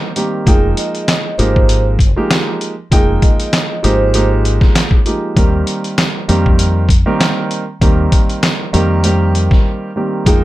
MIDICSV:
0, 0, Header, 1, 5, 480
1, 0, Start_track
1, 0, Tempo, 612245
1, 368, Time_signature, 4, 2, 24, 8
1, 8186, End_track
2, 0, Start_track
2, 0, Title_t, "Vibraphone"
2, 0, Program_c, 0, 11
2, 362, Note_on_c, 0, 68, 96
2, 581, Note_off_c, 0, 68, 0
2, 614, Note_on_c, 0, 75, 76
2, 1062, Note_off_c, 0, 75, 0
2, 1081, Note_on_c, 0, 72, 82
2, 1433, Note_off_c, 0, 72, 0
2, 2287, Note_on_c, 0, 68, 95
2, 2503, Note_off_c, 0, 68, 0
2, 2531, Note_on_c, 0, 75, 75
2, 2981, Note_off_c, 0, 75, 0
2, 3014, Note_on_c, 0, 72, 90
2, 3360, Note_off_c, 0, 72, 0
2, 8043, Note_on_c, 0, 68, 100
2, 8186, Note_off_c, 0, 68, 0
2, 8186, End_track
3, 0, Start_track
3, 0, Title_t, "Grand piano"
3, 0, Program_c, 1, 0
3, 0, Note_on_c, 1, 67, 108
3, 79, Note_off_c, 1, 67, 0
3, 125, Note_on_c, 1, 51, 73
3, 127, Note_on_c, 1, 55, 66
3, 130, Note_on_c, 1, 58, 66
3, 132, Note_on_c, 1, 60, 67
3, 135, Note_on_c, 1, 67, 87
3, 349, Note_off_c, 1, 51, 0
3, 350, Note_off_c, 1, 55, 0
3, 351, Note_off_c, 1, 58, 0
3, 352, Note_off_c, 1, 60, 0
3, 354, Note_off_c, 1, 67, 0
3, 366, Note_on_c, 1, 53, 95
3, 369, Note_on_c, 1, 56, 81
3, 371, Note_on_c, 1, 58, 84
3, 374, Note_on_c, 1, 63, 84
3, 376, Note_on_c, 1, 79, 90
3, 1034, Note_off_c, 1, 53, 0
3, 1036, Note_off_c, 1, 56, 0
3, 1037, Note_off_c, 1, 58, 0
3, 1038, Note_off_c, 1, 63, 0
3, 1040, Note_off_c, 1, 79, 0
3, 1085, Note_on_c, 1, 53, 94
3, 1086, Note_on_c, 1, 56, 89
3, 1089, Note_on_c, 1, 58, 95
3, 1090, Note_on_c, 1, 63, 80
3, 1093, Note_on_c, 1, 67, 94
3, 1531, Note_off_c, 1, 53, 0
3, 1532, Note_off_c, 1, 56, 0
3, 1534, Note_off_c, 1, 58, 0
3, 1534, Note_off_c, 1, 63, 0
3, 1536, Note_off_c, 1, 67, 0
3, 1696, Note_on_c, 1, 53, 92
3, 1698, Note_on_c, 1, 56, 87
3, 1700, Note_on_c, 1, 58, 79
3, 1703, Note_on_c, 1, 63, 74
3, 1705, Note_on_c, 1, 67, 102
3, 2135, Note_off_c, 1, 53, 0
3, 2136, Note_off_c, 1, 56, 0
3, 2137, Note_off_c, 1, 58, 0
3, 2139, Note_off_c, 1, 63, 0
3, 2140, Note_off_c, 1, 67, 0
3, 2283, Note_on_c, 1, 53, 90
3, 2285, Note_on_c, 1, 56, 87
3, 2289, Note_on_c, 1, 58, 85
3, 2290, Note_on_c, 1, 63, 84
3, 2293, Note_on_c, 1, 79, 104
3, 2953, Note_off_c, 1, 53, 0
3, 2954, Note_off_c, 1, 56, 0
3, 2956, Note_off_c, 1, 58, 0
3, 2957, Note_off_c, 1, 63, 0
3, 2958, Note_off_c, 1, 79, 0
3, 3001, Note_on_c, 1, 53, 98
3, 3004, Note_on_c, 1, 56, 85
3, 3006, Note_on_c, 1, 58, 82
3, 3009, Note_on_c, 1, 63, 88
3, 3011, Note_on_c, 1, 67, 108
3, 3227, Note_off_c, 1, 53, 0
3, 3228, Note_off_c, 1, 56, 0
3, 3230, Note_off_c, 1, 58, 0
3, 3231, Note_off_c, 1, 63, 0
3, 3232, Note_off_c, 1, 67, 0
3, 3246, Note_on_c, 1, 53, 95
3, 3249, Note_on_c, 1, 56, 88
3, 3252, Note_on_c, 1, 58, 83
3, 3254, Note_on_c, 1, 63, 89
3, 3256, Note_on_c, 1, 67, 106
3, 3915, Note_off_c, 1, 53, 0
3, 3916, Note_off_c, 1, 56, 0
3, 3917, Note_off_c, 1, 58, 0
3, 3919, Note_off_c, 1, 63, 0
3, 3920, Note_off_c, 1, 67, 0
3, 3965, Note_on_c, 1, 53, 74
3, 3967, Note_on_c, 1, 56, 69
3, 3970, Note_on_c, 1, 58, 65
3, 3972, Note_on_c, 1, 63, 66
3, 3974, Note_on_c, 1, 67, 85
3, 4189, Note_off_c, 1, 53, 0
3, 4190, Note_off_c, 1, 56, 0
3, 4191, Note_off_c, 1, 58, 0
3, 4193, Note_off_c, 1, 63, 0
3, 4194, Note_off_c, 1, 67, 0
3, 4205, Note_on_c, 1, 51, 83
3, 4209, Note_on_c, 1, 55, 91
3, 4211, Note_on_c, 1, 58, 79
3, 4213, Note_on_c, 1, 60, 79
3, 4216, Note_on_c, 1, 67, 100
3, 4874, Note_off_c, 1, 51, 0
3, 4876, Note_off_c, 1, 55, 0
3, 4877, Note_off_c, 1, 58, 0
3, 4878, Note_off_c, 1, 60, 0
3, 4879, Note_off_c, 1, 67, 0
3, 4926, Note_on_c, 1, 51, 94
3, 4929, Note_on_c, 1, 55, 89
3, 4931, Note_on_c, 1, 58, 88
3, 4933, Note_on_c, 1, 60, 88
3, 4936, Note_on_c, 1, 67, 102
3, 5372, Note_off_c, 1, 51, 0
3, 5373, Note_off_c, 1, 55, 0
3, 5374, Note_off_c, 1, 58, 0
3, 5375, Note_off_c, 1, 60, 0
3, 5377, Note_off_c, 1, 67, 0
3, 5534, Note_on_c, 1, 51, 102
3, 5537, Note_on_c, 1, 55, 85
3, 5539, Note_on_c, 1, 58, 83
3, 5541, Note_on_c, 1, 60, 86
3, 5543, Note_on_c, 1, 67, 102
3, 5974, Note_off_c, 1, 51, 0
3, 5976, Note_off_c, 1, 55, 0
3, 5977, Note_off_c, 1, 58, 0
3, 5978, Note_off_c, 1, 60, 0
3, 5979, Note_off_c, 1, 67, 0
3, 6125, Note_on_c, 1, 51, 96
3, 6127, Note_on_c, 1, 55, 82
3, 6129, Note_on_c, 1, 58, 89
3, 6131, Note_on_c, 1, 60, 88
3, 6134, Note_on_c, 1, 67, 101
3, 6794, Note_off_c, 1, 51, 0
3, 6795, Note_off_c, 1, 55, 0
3, 6796, Note_off_c, 1, 58, 0
3, 6797, Note_off_c, 1, 60, 0
3, 6799, Note_off_c, 1, 67, 0
3, 6845, Note_on_c, 1, 51, 101
3, 6846, Note_on_c, 1, 55, 90
3, 6849, Note_on_c, 1, 58, 87
3, 6851, Note_on_c, 1, 60, 81
3, 6853, Note_on_c, 1, 67, 110
3, 7069, Note_off_c, 1, 51, 0
3, 7070, Note_off_c, 1, 55, 0
3, 7071, Note_off_c, 1, 58, 0
3, 7072, Note_off_c, 1, 60, 0
3, 7073, Note_off_c, 1, 67, 0
3, 7088, Note_on_c, 1, 51, 89
3, 7091, Note_on_c, 1, 55, 88
3, 7093, Note_on_c, 1, 58, 83
3, 7095, Note_on_c, 1, 60, 83
3, 7097, Note_on_c, 1, 67, 113
3, 7756, Note_off_c, 1, 51, 0
3, 7757, Note_off_c, 1, 55, 0
3, 7758, Note_off_c, 1, 58, 0
3, 7759, Note_off_c, 1, 60, 0
3, 7760, Note_off_c, 1, 67, 0
3, 7807, Note_on_c, 1, 51, 72
3, 7811, Note_on_c, 1, 55, 66
3, 7812, Note_on_c, 1, 58, 63
3, 7816, Note_on_c, 1, 60, 67
3, 7818, Note_on_c, 1, 67, 87
3, 8030, Note_off_c, 1, 51, 0
3, 8032, Note_off_c, 1, 55, 0
3, 8032, Note_off_c, 1, 58, 0
3, 8034, Note_off_c, 1, 60, 0
3, 8035, Note_off_c, 1, 67, 0
3, 8048, Note_on_c, 1, 53, 99
3, 8050, Note_on_c, 1, 56, 86
3, 8053, Note_on_c, 1, 58, 89
3, 8055, Note_on_c, 1, 63, 87
3, 8057, Note_on_c, 1, 79, 92
3, 8186, Note_off_c, 1, 53, 0
3, 8186, Note_off_c, 1, 56, 0
3, 8186, Note_off_c, 1, 58, 0
3, 8186, Note_off_c, 1, 63, 0
3, 8186, Note_off_c, 1, 79, 0
3, 8186, End_track
4, 0, Start_track
4, 0, Title_t, "Fingered electric bass"
4, 0, Program_c, 2, 33
4, 369, Note_on_c, 2, 29, 105
4, 571, Note_off_c, 2, 29, 0
4, 1092, Note_on_c, 2, 32, 97
4, 1670, Note_off_c, 2, 32, 0
4, 2289, Note_on_c, 2, 29, 99
4, 2491, Note_off_c, 2, 29, 0
4, 3014, Note_on_c, 2, 32, 87
4, 3591, Note_off_c, 2, 32, 0
4, 4209, Note_on_c, 2, 39, 109
4, 4411, Note_off_c, 2, 39, 0
4, 4934, Note_on_c, 2, 41, 89
4, 5511, Note_off_c, 2, 41, 0
4, 6129, Note_on_c, 2, 39, 105
4, 6330, Note_off_c, 2, 39, 0
4, 6855, Note_on_c, 2, 41, 92
4, 7432, Note_off_c, 2, 41, 0
4, 8049, Note_on_c, 2, 41, 105
4, 8186, Note_off_c, 2, 41, 0
4, 8186, End_track
5, 0, Start_track
5, 0, Title_t, "Drums"
5, 126, Note_on_c, 9, 42, 75
5, 204, Note_off_c, 9, 42, 0
5, 366, Note_on_c, 9, 36, 115
5, 368, Note_on_c, 9, 42, 84
5, 444, Note_off_c, 9, 36, 0
5, 446, Note_off_c, 9, 42, 0
5, 606, Note_on_c, 9, 42, 73
5, 684, Note_off_c, 9, 42, 0
5, 742, Note_on_c, 9, 42, 54
5, 820, Note_off_c, 9, 42, 0
5, 846, Note_on_c, 9, 42, 90
5, 848, Note_on_c, 9, 38, 121
5, 856, Note_on_c, 9, 39, 99
5, 925, Note_off_c, 9, 42, 0
5, 926, Note_off_c, 9, 38, 0
5, 934, Note_off_c, 9, 39, 0
5, 1090, Note_on_c, 9, 42, 73
5, 1168, Note_off_c, 9, 42, 0
5, 1224, Note_on_c, 9, 36, 96
5, 1303, Note_off_c, 9, 36, 0
5, 1326, Note_on_c, 9, 42, 101
5, 1404, Note_off_c, 9, 42, 0
5, 1559, Note_on_c, 9, 36, 89
5, 1571, Note_on_c, 9, 42, 76
5, 1638, Note_off_c, 9, 36, 0
5, 1649, Note_off_c, 9, 42, 0
5, 1808, Note_on_c, 9, 38, 113
5, 1809, Note_on_c, 9, 42, 90
5, 1816, Note_on_c, 9, 39, 91
5, 1886, Note_off_c, 9, 38, 0
5, 1887, Note_off_c, 9, 42, 0
5, 1895, Note_off_c, 9, 39, 0
5, 2047, Note_on_c, 9, 42, 72
5, 2125, Note_off_c, 9, 42, 0
5, 2287, Note_on_c, 9, 36, 118
5, 2289, Note_on_c, 9, 42, 84
5, 2365, Note_off_c, 9, 36, 0
5, 2367, Note_off_c, 9, 42, 0
5, 2526, Note_on_c, 9, 42, 69
5, 2527, Note_on_c, 9, 36, 104
5, 2605, Note_off_c, 9, 42, 0
5, 2606, Note_off_c, 9, 36, 0
5, 2662, Note_on_c, 9, 42, 55
5, 2741, Note_off_c, 9, 42, 0
5, 2766, Note_on_c, 9, 42, 93
5, 2768, Note_on_c, 9, 38, 116
5, 2776, Note_on_c, 9, 39, 97
5, 2845, Note_off_c, 9, 42, 0
5, 2846, Note_off_c, 9, 38, 0
5, 2854, Note_off_c, 9, 39, 0
5, 3011, Note_on_c, 9, 42, 74
5, 3090, Note_off_c, 9, 42, 0
5, 3245, Note_on_c, 9, 42, 104
5, 3323, Note_off_c, 9, 42, 0
5, 3490, Note_on_c, 9, 42, 77
5, 3569, Note_off_c, 9, 42, 0
5, 3616, Note_on_c, 9, 36, 100
5, 3619, Note_on_c, 9, 38, 38
5, 3694, Note_off_c, 9, 36, 0
5, 3698, Note_off_c, 9, 38, 0
5, 3728, Note_on_c, 9, 38, 109
5, 3729, Note_on_c, 9, 42, 93
5, 3736, Note_on_c, 9, 39, 91
5, 3806, Note_off_c, 9, 38, 0
5, 3807, Note_off_c, 9, 42, 0
5, 3814, Note_off_c, 9, 39, 0
5, 3848, Note_on_c, 9, 36, 91
5, 3927, Note_off_c, 9, 36, 0
5, 3966, Note_on_c, 9, 42, 71
5, 4044, Note_off_c, 9, 42, 0
5, 4206, Note_on_c, 9, 36, 115
5, 4208, Note_on_c, 9, 42, 84
5, 4285, Note_off_c, 9, 36, 0
5, 4286, Note_off_c, 9, 42, 0
5, 4446, Note_on_c, 9, 42, 69
5, 4524, Note_off_c, 9, 42, 0
5, 4581, Note_on_c, 9, 42, 56
5, 4659, Note_off_c, 9, 42, 0
5, 4687, Note_on_c, 9, 42, 89
5, 4688, Note_on_c, 9, 38, 123
5, 4697, Note_on_c, 9, 39, 100
5, 4766, Note_off_c, 9, 42, 0
5, 4767, Note_off_c, 9, 38, 0
5, 4775, Note_off_c, 9, 39, 0
5, 4930, Note_on_c, 9, 42, 75
5, 5009, Note_off_c, 9, 42, 0
5, 5065, Note_on_c, 9, 36, 94
5, 5143, Note_off_c, 9, 36, 0
5, 5166, Note_on_c, 9, 42, 106
5, 5244, Note_off_c, 9, 42, 0
5, 5399, Note_on_c, 9, 36, 92
5, 5411, Note_on_c, 9, 42, 74
5, 5478, Note_off_c, 9, 36, 0
5, 5490, Note_off_c, 9, 42, 0
5, 5649, Note_on_c, 9, 38, 109
5, 5650, Note_on_c, 9, 42, 90
5, 5657, Note_on_c, 9, 39, 92
5, 5727, Note_off_c, 9, 38, 0
5, 5728, Note_off_c, 9, 42, 0
5, 5736, Note_off_c, 9, 39, 0
5, 5886, Note_on_c, 9, 42, 72
5, 5964, Note_off_c, 9, 42, 0
5, 6127, Note_on_c, 9, 36, 116
5, 6129, Note_on_c, 9, 42, 86
5, 6205, Note_off_c, 9, 36, 0
5, 6207, Note_off_c, 9, 42, 0
5, 6367, Note_on_c, 9, 36, 104
5, 6367, Note_on_c, 9, 42, 70
5, 6445, Note_off_c, 9, 42, 0
5, 6446, Note_off_c, 9, 36, 0
5, 6503, Note_on_c, 9, 42, 53
5, 6582, Note_off_c, 9, 42, 0
5, 6607, Note_on_c, 9, 42, 92
5, 6609, Note_on_c, 9, 38, 117
5, 6617, Note_on_c, 9, 39, 98
5, 6686, Note_off_c, 9, 42, 0
5, 6687, Note_off_c, 9, 38, 0
5, 6695, Note_off_c, 9, 39, 0
5, 6851, Note_on_c, 9, 42, 74
5, 6929, Note_off_c, 9, 42, 0
5, 7085, Note_on_c, 9, 42, 106
5, 7164, Note_off_c, 9, 42, 0
5, 7330, Note_on_c, 9, 42, 76
5, 7409, Note_off_c, 9, 42, 0
5, 7456, Note_on_c, 9, 36, 99
5, 7460, Note_on_c, 9, 38, 38
5, 7535, Note_off_c, 9, 36, 0
5, 7538, Note_off_c, 9, 38, 0
5, 8047, Note_on_c, 9, 36, 114
5, 8048, Note_on_c, 9, 42, 84
5, 8125, Note_off_c, 9, 36, 0
5, 8127, Note_off_c, 9, 42, 0
5, 8186, End_track
0, 0, End_of_file